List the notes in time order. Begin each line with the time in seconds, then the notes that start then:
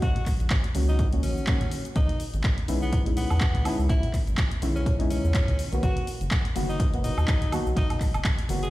Already playing: D#3 F#3 A#3 C#4 F#4
0.02 D#2 F#4, kick, closed hi-hat, high conga, shaker
0.15 closed hi-hat, low conga
0.26 kick, clap, open hi-hat, shaker
0.40 A#1, closed hi-hat, high conga, shaker
0.50 kick, clap, closed hi-hat, shaker
0.64 closed hi-hat
0.74 C#2 D#3 F#3 A#3 C#4 F#4, open hi-hat, high conga, shaker
0.88 D#4, shaker
0.99 kick, closed hi-hat, shaker
1.12 D#3 F#3 A#3 C#4 F#4, closed hi-hat
1.23 A#1 C#4, open hi-hat, high conga, shaker
1.37 shaker
1.47 D#3 F#3 A#3 C#4 F#4, kick, clap, closed hi-hat, shaker
1.60 closed hi-hat, high conga, low conga
1.71 open hi-hat, shaker
1.85 closed hi-hat, shaker
1.95 C#2 D#4, kick, closed hi-hat, high conga, shaker
2.09 closed hi-hat, low conga
2.20 open hi-hat, shaker
2.34 G#1, closed hi-hat, high conga, shaker
2.44 kick, clap, closed hi-hat, shaker
2.58 closed hi-hat
2.68 B1 G#3 B3 C#4 D#4 E4, open hi-hat, high conga, shaker
2.82 B3, shaker
2.93 kick, closed hi-hat, shaker
3.05 G#3 B3 C#4 D#4 E4, closed hi-hat
3.17 B3, open hi-hat, high conga, low conga, shaker
3.30 E2, high woodblock, shaker
3.41 kick, clap, closed hi-hat, shaker
3.54 C#2, closed hi-hat, high conga, low conga
3.64 G#3 B3 C#4 D#4 E4, open hi-hat, high woodblock, shaker
3.79 C#2, shaker
3.89 C#2 E4, kick, closed hi-hat, high conga, shaker
4.03 closed hi-hat, low conga
4.13 kick, clap, open hi-hat, shaker
4.27 G#1, closed hi-hat, high conga, shaker
4.37 kick, clap, closed hi-hat, shaker
4.51 closed hi-hat
4.61 B1 D#3 G#3 B3 C#4 E4, open hi-hat, high conga, shaker
4.76 C#4, shaker
4.86 kick, closed hi-hat, shaker
4.99 G#3 B3 C#4 D#4 E4, closed hi-hat
5.10 C#4, open hi-hat, high conga, shaker
5.24 E2, shaker
5.34 kick, clap, closed hi-hat, shaker
5.48 C#2, closed hi-hat, high conga, low conga
5.59 open hi-hat, shaker
5.71 B1 D#3 F#3 A#3 B3 F#4, closed hi-hat, shaker
5.82 B1 F#4, kick, closed hi-hat, high conga, shaker
5.97 closed hi-hat, low conga
6.07 open hi-hat, shaker
6.21 F#1, closed hi-hat, high conga, shaker
6.31 kick, clap, closed hi-hat, shaker
6.45 closed hi-hat
6.55 F#1 D#3 F#3 A#3 B3 F#4, open hi-hat, high conga, shaker
6.69 D#4, shaker
6.80 kick, closed hi-hat, shaker
6.92 D#3 F#3 A#3 B3 F#4, closed hi-hat
7.04 D#4, open hi-hat, high conga, low conga, shaker
7.18 D#2, high woodblock, shaker
7.28 kick, clap, closed hi-hat, shaker
7.41 B1, closed hi-hat, high conga, low conga
7.51 D#3 F#3 A#3 B3 F#4, open hi-hat, high woodblock, shaker
7.66 B1, shaker
7.76 B1 D#4, kick, closed hi-hat, high conga, shaker
7.90 closed hi-hat, low conga, high woodblock
8.00 kick, clap, open hi-hat, shaker
8.14 F#1, closed hi-hat, high conga, high woodblock, shaker
8.25 kick, clap, closed hi-hat, shaker
8.39 closed hi-hat
8.49 F#1 D#3 F#3 A#3 B3 F#4, open hi-hat, high conga, shaker
8.63 G#4, closed hi-hat, shaker